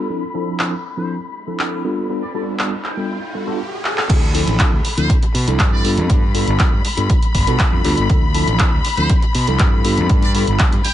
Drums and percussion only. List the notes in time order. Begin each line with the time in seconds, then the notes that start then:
0.59 clap
1.59 clap
2.59 clap
2.84 clap
3.85 clap
3.98 clap
4.10 kick, closed hi-hat, crash
4.35 open hi-hat
4.47 closed hi-hat
4.59 kick, clap, closed hi-hat
4.85 open hi-hat
4.98 closed hi-hat
5.10 kick, closed hi-hat
5.23 closed hi-hat
5.35 open hi-hat
5.48 closed hi-hat
5.59 kick, clap, closed hi-hat
5.85 open hi-hat
5.98 closed hi-hat
6.10 kick, closed hi-hat
6.35 open hi-hat
6.48 closed hi-hat
6.59 kick, clap, closed hi-hat
6.85 open hi-hat
6.97 closed hi-hat
7.10 kick, closed hi-hat
7.23 closed hi-hat
7.35 kick, open hi-hat
7.47 closed hi-hat
7.59 kick, clap, closed hi-hat
7.85 open hi-hat
7.97 closed hi-hat
8.10 kick, closed hi-hat
8.34 open hi-hat
8.48 closed hi-hat
8.59 kick, clap, closed hi-hat
8.85 open hi-hat
8.97 closed hi-hat
9.10 kick, closed hi-hat
9.22 closed hi-hat
9.35 open hi-hat
9.47 closed hi-hat
9.59 kick, clap, closed hi-hat
9.85 open hi-hat
9.98 closed hi-hat
10.10 kick, closed hi-hat
10.22 closed hi-hat
10.35 open hi-hat
10.47 closed hi-hat
10.59 kick, clap, closed hi-hat
10.73 closed hi-hat
10.85 open hi-hat